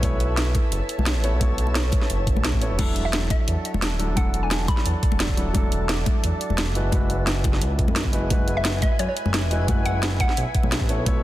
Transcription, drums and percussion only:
0.03 kick loud
0.03 closed hi-hat medium
0.03 high conga medium
0.20 closed hi-hat medium
0.37 snare loud
0.37 closed hi-hat medium
0.55 kick loud
0.55 closed hi-hat medium
0.55 muted conga medium
0.55 high conga medium
0.72 closed hi-hat medium
0.89 closed hi-hat medium
0.99 high conga medium
1.06 snare loud
1.06 closed hi-hat medium
1.24 closed hi-hat medium
1.41 kick loud
1.41 closed hi-hat medium
1.41 high conga medium
1.58 closed hi-hat medium
1.67 muted conga soft
1.75 snare loud
1.75 closed hi-hat medium
1.92 kick loud
1.92 closed hi-hat medium
1.92 muted conga medium
1.92 high conga medium
2.02 snare soft
2.10 closed hi-hat medium
2.27 kick loud
2.27 closed hi-hat medium
2.36 high conga medium
2.45 snare loud
2.45 closed hi-hat medium
2.53 kick medium
2.62 closed hi-hat medium
2.79 kick loud
2.79 closed hi-hat medium
2.79 crash medium
2.79 high conga loud
2.96 closed hi-hat medium
3.13 snare loud
3.13 closed hi-hat loud
3.30 kick loud
3.30 closed hi-hat medium
3.30 muted conga medium
3.30 high conga medium
3.48 closed hi-hat loud
3.65 closed hi-hat medium
3.74 high conga loud
3.82 snare loud
3.82 closed hi-hat loud
4.00 closed hi-hat medium
4.17 kick loud
4.17 closed hi-hat loud
4.17 high conga loud
4.34 closed hi-hat medium
4.51 snare loud
4.51 closed hi-hat medium
4.68 kick loud
4.68 closed hi-hat medium
4.68 muted conga medium
4.68 high conga medium
4.77 snare soft
4.86 closed hi-hat loud
5.03 kick loud
5.03 closed hi-hat medium
5.12 high conga loud
5.20 snare loud
5.20 closed hi-hat medium
5.29 kick medium
5.37 closed hi-hat medium
5.55 kick loud
5.55 closed hi-hat loud
5.55 high conga loud
5.72 closed hi-hat medium
5.89 snare loud
5.89 closed hi-hat loud
6.06 kick loud
6.06 closed hi-hat medium
6.06 muted conga medium
6.06 high conga medium
6.24 closed hi-hat medium
6.41 closed hi-hat medium
6.50 high conga medium
6.58 snare loud
6.58 closed hi-hat medium
6.75 closed hi-hat medium
6.92 kick loud
6.92 closed hi-hat medium
6.92 high conga medium
7.10 closed hi-hat medium
7.27 snare loud
7.27 closed hi-hat medium
7.44 kick loud
7.44 closed hi-hat medium
7.44 muted conga medium
7.44 high conga medium
7.53 snare soft
7.62 closed hi-hat medium
7.79 kick loud
7.79 closed hi-hat medium
7.88 high conga loud
7.96 snare loud
7.96 closed hi-hat medium
8.05 kick medium
8.13 closed hi-hat medium
8.30 kick loud
8.30 closed hi-hat medium
8.30 high conga loud
8.48 closed hi-hat medium
8.65 snare loud
8.65 closed hi-hat medium
8.82 kick loud
8.82 closed hi-hat medium
8.82 muted conga medium
8.82 high conga medium
8.99 closed hi-hat medium
9.17 closed hi-hat medium
9.26 high conga loud
9.34 snare loud
9.34 closed hi-hat medium
9.51 closed hi-hat medium
9.68 kick loud
9.68 closed hi-hat medium
9.68 high conga medium
9.86 closed hi-hat medium
10.03 snare loud
10.03 closed hi-hat medium
10.20 kick loud
10.20 closed hi-hat medium
10.20 muted conga medium
10.20 high conga medium
10.29 snare soft
10.37 closed hi-hat medium
10.55 kick loud
10.55 closed hi-hat medium
10.63 high conga medium
10.72 snare loud
10.72 closed hi-hat medium
10.81 kick medium
10.89 closed hi-hat medium
11.06 kick loud
11.06 closed hi-hat medium
11.06 high conga medium

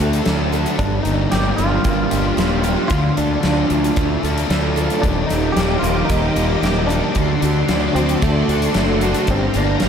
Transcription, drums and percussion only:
0.00 closed hi-hat medium
0.13 closed hi-hat medium
0.26 snare loud
0.26 closed hi-hat medium
0.53 closed hi-hat medium
0.66 closed hi-hat medium
0.79 kick medium
0.79 closed hi-hat medium
1.05 closed hi-hat medium
1.32 snare loud
1.32 closed hi-hat medium
1.58 closed hi-hat medium
1.84 kick loud
1.84 closed hi-hat medium
2.11 closed hi-hat medium
2.38 snare loud
2.38 closed hi-hat medium
2.64 closed hi-hat medium
2.90 kick loud
2.90 closed hi-hat medium
3.17 closed hi-hat medium
3.43 snare medium
3.43 closed hi-hat medium
3.70 closed hi-hat medium
3.84 closed hi-hat soft
3.96 kick loud
3.96 closed hi-hat medium
4.25 closed hi-hat medium
4.38 closed hi-hat medium
4.50 snare loud
4.50 closed hi-hat medium
4.77 closed hi-hat medium
4.90 closed hi-hat medium
5.03 kick loud
5.03 closed hi-hat medium
5.30 snare soft
5.30 closed hi-hat medium
5.57 snare loud
5.57 closed hi-hat medium
5.84 closed hi-hat medium
6.10 kick loud
6.10 closed hi-hat medium
6.36 closed hi-hat medium
6.63 snare loud
6.63 closed hi-hat medium
6.90 closed hi-hat medium
7.15 kick medium
7.15 closed hi-hat medium
7.42 closed hi-hat medium
7.69 snare loud
7.69 closed hi-hat medium
7.96 closed hi-hat medium
8.09 closed hi-hat medium
8.22 kick loud
8.22 closed hi-hat medium
8.49 closed hi-hat medium
8.62 closed hi-hat medium
8.74 snare loud
8.74 closed hi-hat medium
9.01 closed hi-hat medium
9.14 closed hi-hat medium
9.27 kick loud
9.27 closed hi-hat medium
9.54 closed hi-hat medium
9.80 snare loud
9.80 closed hi-hat medium

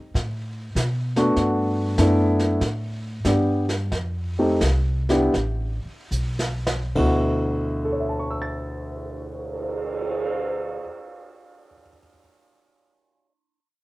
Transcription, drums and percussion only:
0.15 brush sweep soft
0.15 kick soft
0.15 snare soft
0.76 kick soft
0.76 snare medium
0.76 hi-hat pedal medium
1.16 snare soft
1.36 brush sweep soft
1.36 kick soft
1.36 snare soft
1.98 kick soft
1.98 snare medium
1.98 hi-hat pedal medium
2.39 snare soft
2.61 brush sweep soft
2.61 kick soft
2.61 snare soft
3.25 kick soft
3.25 snare medium
3.25 hi-hat pedal medium
3.69 snare soft
3.92 brush sweep soft
3.92 kick soft
3.92 snare soft
4.61 kick soft
4.61 snare medium
4.61 hi-hat pedal medium
5.09 snare soft
5.34 brush sweep soft
5.34 kick soft
5.34 snare soft
6.12 hi-hat pedal soft
6.39 snare medium
6.67 snare medium
6.95 kick soft
6.95 crash medium
7.53 cymbal swell soft

